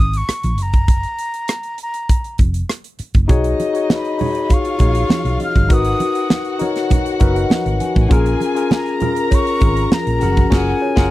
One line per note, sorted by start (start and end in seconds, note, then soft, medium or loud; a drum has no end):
0.00 0.21 G#1 medium
0.00 0.19 D#6 loud
0.13 0.64 C#6 medium
0.13 closed hi-hat medium
0.28 muted fingered electric bass stroke soft
0.28 cross-stick loud
0.28 closed hi-hat medium
0.43 0.58 A#1 medium
0.43 closed hi-hat medium
0.58 1.04 F#1 medium
0.58 closed hi-hat medium
0.62 1.81 A#5 medium
0.73 kick medium
0.73 closed hi-hat soft
0.88 kick loud
0.88 closed hi-hat medium
1.03 closed hi-hat soft
1.19 closed hi-hat medium
1.34 closed hi-hat soft
1.48 cross-stick loud
1.48 closed hi-hat medium
1.63 closed hi-hat soft
1.78 closed hi-hat medium
1.83 2.37 A#5 medium
1.94 closed hi-hat medium
2.09 kick medium
2.09 closed hi-hat medium
2.24 closed hi-hat soft
2.38 2.62 F1 medium
2.38 kick medium
2.38 closed hi-hat medium
2.54 closed hi-hat medium
2.69 cross-stick loud
2.69 closed hi-hat medium
2.84 closed hi-hat medium
2.99 muted fingered electric bass stroke soft
2.99 closed hi-hat medium
3.14 3.26 F#1 medium
3.14 kick medium
3.14 closed hi-hat soft
3.28 3.52 B1 loud
3.28 3.69 D#4 loud
3.28 4.48 D#4 medium
3.28 3.69 F#4 medium
3.28 3.70 G#4 medium
3.28 3.70 C#5 loud
3.28 4.48 D#5 medium
3.28 kick loud
3.28 closed hi-hat medium
3.28 muted conga soft
3.44 closed hi-hat medium
3.60 closed hi-hat medium
3.60 muted conga soft
3.73 4.14 D#4 medium
3.73 4.15 F#4 medium
3.73 4.15 G#4 medium
3.73 4.16 C#5 medium
3.73 closed hi-hat soft
3.90 4.75 B4 soft
3.90 4.55 B5 medium
3.90 snare loud
3.90 high conga medium
4.05 closed hi-hat soft
4.18 4.73 D#4 medium
4.18 4.73 F#4 medium
4.18 4.74 G#4 medium
4.18 4.74 C#5 medium
4.18 open hi-hat medium
4.18 muted conga soft
4.18 low conga medium
4.35 closed hi-hat medium
4.50 5.68 F4 medium
4.50 5.68 F5 medium
4.50 kick medium
4.50 closed hi-hat medium
4.50 muted conga soft
4.54 5.42 C#6 loud
4.65 closed hi-hat soft
4.78 5.03 A#1 medium
4.78 5.60 D#4 medium
4.78 5.60 F#4 medium
4.78 5.61 G#4 medium
4.78 5.61 C#5 medium
4.78 kick medium
4.78 closed hi-hat medium
4.95 closed hi-hat medium
5.10 snare loud
5.10 high conga medium
5.25 5.36 B1 medium
5.25 closed hi-hat soft
5.40 5.96 D#5 soft
5.40 5.75 F6 medium
5.40 closed hi-hat medium
5.40 high conga soft
5.55 5.70 G1 medium
5.55 kick medium
5.55 closed hi-hat soft
5.55 high conga medium
5.69 5.93 G#1 loud
5.69 6.50 D#4 medium
5.69 6.51 F#4 medium
5.69 8.07 F#4 medium
5.69 6.51 A#4 medium
5.69 6.52 B4 medium
5.69 8.07 F#5 medium
5.69 kick loud
5.69 closed hi-hat medium
5.69 muted conga soft
5.73 6.62 D#6 loud
5.85 closed hi-hat medium
6.00 closed hi-hat medium
6.00 muted conga soft
6.15 closed hi-hat soft
6.30 snare loud
6.30 high conga medium
6.45 closed hi-hat soft
6.59 7.14 D#4 medium
6.59 7.14 F#4 medium
6.59 7.15 A#4 medium
6.59 7.15 C#5 medium
6.59 closed hi-hat medium
6.59 muted conga medium
6.76 snare soft
6.76 closed hi-hat medium
6.90 kick medium
6.90 closed hi-hat medium
6.90 muted conga soft
6.90 low conga medium
7.06 closed hi-hat soft
7.19 7.44 F#1 medium
7.19 8.01 D#4 medium
7.19 8.01 F#4 medium
7.19 8.02 A#4 medium
7.19 8.02 B4 medium
7.19 7.35 D#5 medium
7.19 kick medium
7.19 closed hi-hat medium
7.35 7.49 F#5 medium
7.35 closed hi-hat medium
7.50 7.79 F#5 medium
7.50 muted fingered electric bass stroke soft
7.50 snare loud
7.50 high conga medium
7.66 7.77 G#1 medium
7.66 closed hi-hat medium
7.80 8.09 G#5 medium
7.80 closed hi-hat medium
7.80 high conga soft
7.96 8.07 A1 medium
7.96 kick medium
7.96 closed hi-hat soft
7.96 high conga medium
8.09 8.34 A#1 loud
8.09 8.50 C#4 loud
8.09 8.51 F4 medium
8.09 8.99 G#4 medium
8.09 8.51 G#4 medium
8.09 8.52 A#4 loud
8.09 8.99 G#5 medium
8.09 kick loud
8.09 closed hi-hat medium
8.09 muted conga soft
8.26 closed hi-hat medium
8.41 closed hi-hat medium
8.41 muted conga soft
8.54 8.96 C#4 medium
8.54 8.96 F4 medium
8.54 8.97 G#4 medium
8.54 8.97 A#4 medium
8.54 closed hi-hat medium
8.71 9.36 A#5 medium
8.71 snare loud
8.71 high conga medium
8.86 closed hi-hat soft
9.00 9.54 C#4 medium
9.00 9.55 F4 medium
9.00 9.55 G#4 medium
9.00 10.20 A#4 medium
9.00 9.56 A#4 medium
9.00 10.19 A#5 medium
9.00 closed hi-hat medium
9.00 muted conga medium
9.00 low conga medium
9.16 closed hi-hat medium
9.31 10.17 C#5 medium
9.31 9.96 C#6 loud
9.31 kick medium
9.31 closed hi-hat medium
9.31 muted conga soft
9.47 closed hi-hat soft
9.60 9.84 G#1 medium
9.60 10.19 C#4 medium
9.60 10.21 F4 medium
9.60 10.21 G#4 medium
9.60 10.22 A#4 medium
9.60 kick medium
9.60 closed hi-hat medium
9.77 closed hi-hat medium
9.92 10.48 A#4 medium
9.92 10.56 A#5 loud
9.92 muted fingered electric bass stroke soft
9.92 snare loud
9.92 high conga medium
10.07 10.18 A#1 medium
10.07 closed hi-hat medium
10.20 10.45 F#1 medium
10.20 10.49 C#4 medium
10.20 10.51 F#4 medium
10.20 10.50 F#4 medium
10.20 10.51 G#4 medium
10.20 10.52 A#4 medium
10.20 10.51 F#5 medium
10.20 closed hi-hat medium
10.20 high conga soft
10.37 kick medium
10.37 closed hi-hat soft
10.37 high conga medium
10.50 10.72 F#1 loud
10.50 10.71 C#4 medium
10.50 10.72 F4 medium
10.50 10.72 F#4 medium
10.50 10.73 G#4 medium
10.50 10.73 A#4 medium
10.50 10.72 F#5 medium
10.50 kick loud
10.50 snare loud
10.50 crash medium
10.55 11.11 G#5 loud
10.82 11.11 C#5 medium
10.96 11.11 F#1 medium
10.96 11.11 C#4 loud
10.96 11.11 F4 medium
10.96 11.11 F#4 loud
10.96 11.11 G#4 medium
10.96 11.11 A#4 loud
10.96 11.11 F#5 medium
10.96 kick loud
10.96 snare medium